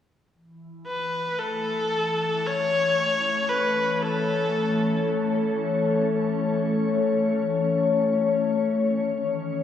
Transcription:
0.33 ambient pad E3
0.87 electric violin B4
1.18 ambient pad A3
1.39 electric violin A4
2.10 ambient pad C#4
2.46 electric violin C#5
2.54 ambient pad C#5
3.35 ambient pad A4
3.49 electric violin B4
4.02 electric violin A4
8.76 ambient pad D#3

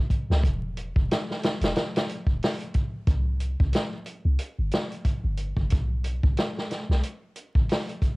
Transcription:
0.10 kick, closed hi-hat
0.30 808-style bass C#2, snare
0.43 808-style bass E1, kick, closed hi-hat
0.77 closed hi-hat
0.96 808-style bass E1, kick
1.11 snare, closed hi-hat
1.31 snare
1.43 snare, closed hi-hat
1.61 808-style bass E1, snare, closed hi-hat
1.76 snare, closed hi-hat
1.96 snare, closed hi-hat
2.09 closed hi-hat
2.27 808-style bass D1, kick
2.43 snare, open hi-hat
2.60 closed hi-hat
2.74 kick, closed hi-hat
3.07 808-style bass C2, kick, closed hi-hat
3.40 closed hi-hat
3.60 808-style bass C2, kick
3.73 snare, closed hi-hat
4.06 closed hi-hat
4.25 808-style bass C2
4.39 closed hi-hat
4.59 808-style bass G1
4.72 snare, closed hi-hat
4.92 closed hi-hat
5.05 kick, closed hi-hat
5.24 808-style bass G1
5.37 closed hi-hat
5.57 808-style bass G1, kick
5.70 808-style bass B1, kick, closed hi-hat
6.04 closed hi-hat
6.23 808-style bass B1, kick
6.37 snare, closed hi-hat
6.58 snare
6.71 snare, closed hi-hat
6.89 808-style bass B1, snare
7.03 closed hi-hat
7.35 closed hi-hat
7.55 808-style bass A1, kick
7.69 snare, open hi-hat
7.89 closed hi-hat
8.02 kick, closed hi-hat

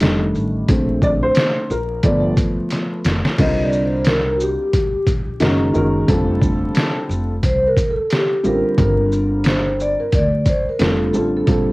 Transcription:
0.00 upright bass F1, upright piano D#3 G3 A3 D4, snare, closed hi-hat
0.35 upright bass A1, shaker
0.68 upright bass A#1, upright piano D3 A3 C4, kick, closed hi-hat
1.02 upright piano D5, kick, shaker
1.23 upright piano C5
1.35 snare, closed hi-hat
1.70 upright bass A#1, upright piano A#4, shaker
2.03 upright bass G1, upright piano F3 A3 B3 D5, kick, closed hi-hat
2.37 kick, closed hi-hat, shaker
2.70 snare, closed hi-hat
3.05 upright bass F1, snare, closed hi-hat, shaker
3.25 snare
3.38 upright bass C2, upright piano D3 G3 C4 F4 A#4, vibraphone D#5, kick, closed hi-hat, crash
3.63 vibraphone D5
3.73 shaker
3.86 vibraphone C5
4.04 vibraphone A#4, snare, closed hi-hat
4.36 vibraphone F#4
4.40 vibraphone G4, shaker
4.73 kick, closed hi-hat
5.07 upright bass A#1, kick, closed hi-hat, shaker
5.40 upright bass F#1, upright piano D#3 G#3 C#4 F#4 A#4, snare, closed hi-hat
5.74 upright bass F#1, upright piano D#3 G#3 C#4 F#4 A#4, shaker
6.08 upright bass F1, upright piano D3 G3 C4 F4 A4, kick, closed hi-hat
6.42 kick, shaker
6.75 snare, closed hi-hat
7.09 upright bass F1, shaker
7.43 upright bass C2, vibraphone C5, kick, closed hi-hat
7.67 vibraphone A#4
7.77 kick, closed hi-hat, shaker
7.91 vibraphone A4
8.10 vibraphone G4, snare, closed hi-hat
8.43 upright bass A1, upright piano D3 G3 C4 F4 G4, vibraphone A#4, shaker
8.77 upright bass G1, upright piano D3 G3 C4 F4 A#4, kick, closed hi-hat
9.12 shaker
9.44 vibraphone C5, snare, closed hi-hat
9.80 vibraphone D5, shaker
10.00 vibraphone A#4
10.12 upright bass D2, vibraphone D5, kick, closed hi-hat
10.45 vibraphone D5, kick, closed hi-hat, shaker
10.49 vibraphone C5
10.69 vibraphone A#4
10.79 upright bass F1, upright piano D3 G3 C4 F4 A4, snare, closed hi-hat
10.83 vibraphone A4
11.13 upright bass A1, upright piano D3 G3 C4 F4 A4, vibraphone F4, shaker
11.37 vibraphone A4
11.47 upright bass A#1, upright piano D3 G3 C4 F4 A4, kick, closed hi-hat

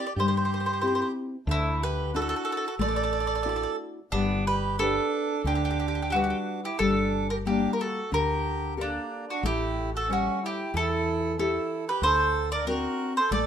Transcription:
Already playing: accordion G4
0.07 mandolin D5
0.16 fretless electric bass G2, nylon-string guitar G3, accordion G4
0.20 mandolin C5
0.28 mandolin C5
0.37 mandolin C5
0.45 mandolin C5
0.54 mandolin C5
0.60 mandolin C5
0.66 mandolin C5
0.73 mandolin C5
0.81 nylon-string guitar C4 E4 G4, mandolin C5
0.88 mandolin C5
0.95 mandolin C5
1.02 mandolin C5
1.47 fretless electric bass D2, nylon-string guitar D3, accordion A3
1.51 mandolin E4
1.82 accordion G4, mandolin B4
2.13 nylon-string guitar D4 E4 F#4, accordion F#4, mandolin A4
2.22 mandolin A4
2.29 mandolin A4
2.36 mandolin A4
2.45 mandolin A4
2.52 mandolin A4
2.57 mandolin A4
2.68 mandolin A4
2.79 fretless electric bass A1, nylon-string guitar A3, accordion A4, mandolin D5
2.88 mandolin D5
2.96 mandolin D5
3.04 mandolin D5
3.13 mandolin D5
3.20 mandolin D5
3.27 mandolin D5
3.35 mandolin D5
3.43 nylon-string guitar D4 E4 F#4, mandolin D5
3.49 mandolin D5
3.56 mandolin D5
3.63 mandolin D5
4.12 fretless electric bass G1, nylon-string guitar G3, accordion B3, mandolin D4
4.47 accordion G4, mandolin B4
4.79 nylon-string guitar D4 G4 B4, accordion D4, mandolin A4
5.44 fretless electric bass D2, nylon-string guitar D3, accordion D4, mandolin G4
5.55 mandolin G4
5.65 mandolin G4
5.71 mandolin G4
5.80 mandolin G4
5.88 mandolin G4
5.95 mandolin G4
6.02 mandolin G4
6.10 nylon-string guitar G3 D4 B4, accordion D4, mandolin F#4 G4
6.16 mandolin G4
6.24 mandolin G4
6.30 mandolin G4
6.64 accordion E4, mandolin G4
6.79 fretless electric bass G1, nylon-string guitar G3, accordion D4, mandolin A4
7.30 accordion G4, mandolin A#4
7.45 nylon-string guitar G3 A#3 A4, mandolin G4
7.49 accordion D4
7.73 accordion G4, mandolin A#4
7.81 accordion F#4, mandolin A4
8.12 fretless electric bass D2, nylon-string guitar D3, accordion G4, mandolin A#4
8.77 accordion A#3, nylon-string guitar G4 A4 A#4
8.81 mandolin D4
9.30 accordion D4, mandolin F#4
9.43 fretless electric bass A1, nylon-string guitar A3, accordion E4, mandolin G4
9.95 accordion F#4, mandolin A4
10.08 nylon-string guitar G3 A4 C#5, accordion C#4
10.13 mandolin F#4
10.43 accordion E4, mandolin G4
10.74 fretless electric bass E2, nylon-string guitar E3, accordion E4, mandolin A4
11.39 accordion E4, nylon-string guitar G4 A4 C#5, mandolin A4
11.89 accordion G4, mandolin B4
12.02 fretless electric bass D2, nylon-string guitar D3, accordion A4, mandolin C5
12.52 accordion A#4, mandolin D5
12.67 nylon-string guitar C4 D4 F#4, accordion F#4, mandolin A#4
13.17 accordion A4, mandolin C5
13.31 fretless electric bass A1, nylon-string guitar A3, accordion A4, mandolin D5

